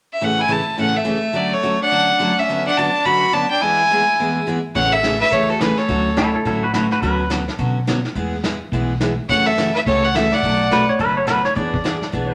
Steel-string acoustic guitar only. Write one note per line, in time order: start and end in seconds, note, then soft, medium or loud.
0.21 0.41 A2 medium
0.21 0.41 C#3 medium
0.21 0.41 E3 medium
0.21 0.41 A3 medium
0.21 0.41 C#4 medium
0.21 0.41 G#4 medium
0.48 0.60 A2 medium
0.48 0.60 C#3 medium
0.48 0.60 E3 medium
0.48 0.60 A3 medium
0.48 0.60 C#4 medium
0.48 0.61 G#4 medium
0.77 0.97 A2 medium
0.77 0.97 C#3 medium
0.77 0.98 E3 medium
0.77 0.98 A3 medium
0.77 0.98 C#4 medium
0.77 0.98 G#4 medium
1.04 1.16 A2 medium
1.04 1.17 C#3 medium
1.04 1.16 E3 medium
1.04 1.17 A3 medium
1.04 1.17 C#4 medium
1.04 1.17 G#4 medium
1.33 1.53 D3 medium
1.33 1.53 F#3 medium
1.33 1.54 A3 medium
1.33 1.54 C#4 medium
1.33 1.54 F#4 medium
1.63 1.74 D3 medium
1.63 1.74 F#3 medium
1.63 1.74 A3 medium
1.63 1.74 C#4 medium
1.63 1.74 F#4 medium
1.91 2.11 D3 medium
1.91 2.11 F#3 medium
1.91 2.11 A3 medium
1.91 2.11 C#4 medium
1.91 2.11 F#4 medium
2.19 2.31 D3 medium
2.19 2.31 F#3 medium
2.19 2.31 A3 medium
2.19 2.31 C#4 medium
2.19 2.31 F#4 medium
2.49 2.68 D3 medium
2.49 2.68 F#3 medium
2.49 2.68 B3 medium
2.49 2.68 C#4 medium
2.49 2.69 F#4 medium
2.78 2.88 D3 medium
2.78 2.89 F#3 medium
2.78 2.89 B3 medium
2.78 2.89 C#4 medium
2.78 2.89 F#4 medium
3.05 3.24 D3 medium
3.05 3.25 F#3 medium
3.05 3.25 B3 medium
3.05 3.25 C#4 medium
3.05 3.25 F#4 medium
3.32 3.44 D3 medium
3.32 3.44 F#3 medium
3.32 3.44 B3 medium
3.32 3.45 C#4 medium
3.32 3.44 F#4 medium
3.62 3.82 E3 medium
3.62 3.81 G#3 medium
3.62 3.82 B3 medium
3.62 3.82 E4 medium
3.62 3.82 G#4 medium
3.91 4.02 E3 medium
3.91 4.02 G#3 medium
3.91 4.02 B3 medium
3.91 4.02 E4 medium
3.91 4.02 G#4 medium
4.19 4.38 E3 medium
4.19 4.39 G#3 medium
4.19 4.39 B3 medium
4.19 4.39 E4 medium
4.19 4.39 G#4 medium
4.47 4.58 E3 medium
4.47 4.58 G#3 medium
4.47 4.58 B3 medium
4.47 4.58 E4 medium
4.47 4.59 G#4 medium
4.75 4.95 C#3 medium
4.75 4.95 E3 medium
4.75 4.95 A3 medium
4.75 4.95 C#4 medium
4.75 4.95 G#4 medium
5.03 5.14 C#3 medium
5.03 5.15 E3 medium
5.03 5.15 A3 medium
5.03 5.15 C#4 medium
5.03 5.15 G#4 medium
5.32 5.52 C#3 medium
5.32 5.52 E3 medium
5.32 5.52 A3 medium
5.32 5.52 C#4 medium
5.32 5.52 G#4 medium
5.61 5.71 C#3 medium
5.61 5.72 E3 medium
5.61 5.72 A3 medium
5.61 5.72 C#4 medium
5.61 5.72 G#4 medium
5.88 6.08 D3 medium
5.88 6.08 F#3 medium
5.88 6.08 A3 medium
5.88 6.08 C#4 medium
5.88 6.08 F#4 medium
6.17 6.28 D3 medium
6.17 6.28 F#3 medium
6.17 6.28 A3 medium
6.17 6.28 C#4 medium
6.17 6.28 F#4 medium
6.45 6.65 D3 medium
6.45 6.65 F#3 medium
6.45 6.65 A3 medium
6.45 6.65 C#4 medium
6.45 6.65 F#4 medium
6.74 6.85 D3 medium
6.74 6.85 F#3 medium
6.74 6.85 A3 medium
6.74 6.85 C#4 medium
6.74 6.85 F#4 medium
7.02 7.22 D3 medium
7.02 7.22 F#3 medium
7.02 7.22 B3 medium
7.02 7.22 C#4 medium
7.02 7.22 F#4 medium
7.30 7.41 D3 medium
7.30 7.41 F#3 medium
7.30 7.41 B3 medium
7.30 7.42 C#4 medium
7.30 7.42 F#4 medium
7.58 7.78 D3 medium
7.58 7.78 F#3 medium
7.58 7.78 B3 medium
7.58 7.78 C#4 medium
7.58 7.79 F#4 medium
7.87 7.98 D3 medium
7.87 7.98 F#3 medium
7.87 7.98 B3 medium
7.87 7.98 C#4 medium
7.87 7.99 F#4 medium
8.15 8.35 E3 medium
8.15 8.35 G#3 medium
8.15 8.35 B3 medium
8.15 8.35 E4 medium
8.15 8.35 G#4 medium
8.44 8.55 E3 medium
8.44 8.55 G#3 medium
8.44 8.55 B3 medium
8.44 8.55 E4 medium
8.44 8.55 G#4 medium
8.73 8.92 E3 medium
8.73 8.92 G#3 medium
8.73 8.92 B3 medium
8.73 8.92 E4 medium
8.73 8.93 G#4 medium
9.01 9.12 E3 medium
9.01 9.12 G#3 medium
9.01 9.12 B3 medium
9.01 9.12 E4 medium
9.01 9.13 G#4 medium
9.29 9.49 C#3 medium
9.29 9.49 E3 medium
9.29 9.49 A3 medium
9.29 9.50 C#4 medium
9.29 9.49 F#4 medium
9.58 9.69 C#3 medium
9.58 9.69 E3 medium
9.58 9.69 A3 medium
9.58 9.69 C#4 medium
9.58 9.69 F#4 medium
9.87 10.06 C#3 medium
9.87 10.06 E3 medium
9.87 10.06 A3 medium
9.87 10.06 C#4 medium
9.87 10.06 F#4 medium
10.15 10.26 C#3 medium
10.15 10.26 E3 medium
10.15 10.26 A3 medium
10.15 10.26 C#4 medium
10.15 10.26 F#4 medium
10.43 10.62 B2 medium
10.43 10.63 F#3 medium
10.43 10.63 A3 medium
10.43 10.63 D4 medium
10.43 10.63 F#4 medium
10.71 10.82 B2 medium
10.71 10.82 F#3 medium
10.71 10.82 A3 medium
10.71 10.83 D4 medium
10.71 10.83 F#4 medium
10.99 11.19 B2 medium
10.99 11.19 F#3 medium
10.99 11.19 A3 medium
10.99 11.19 D4 medium
10.99 11.19 F#4 medium
11.27 11.38 B2 medium
11.27 11.38 F#3 medium
11.27 11.38 A3 medium
11.27 11.39 D4 medium
11.27 11.39 F#4 medium
11.55 11.75 E3 medium
11.55 11.76 B3 medium
11.55 11.76 D4 medium
11.55 11.76 G#4 medium
11.84 11.95 E3 medium
11.84 11.96 B3 medium
11.84 11.96 D4 medium
11.84 11.96 G#4 medium
12.12 12.32 E3 medium
12.12 12.33 B3 medium
12.12 12.33 D4 medium
12.12 12.33 G#4 medium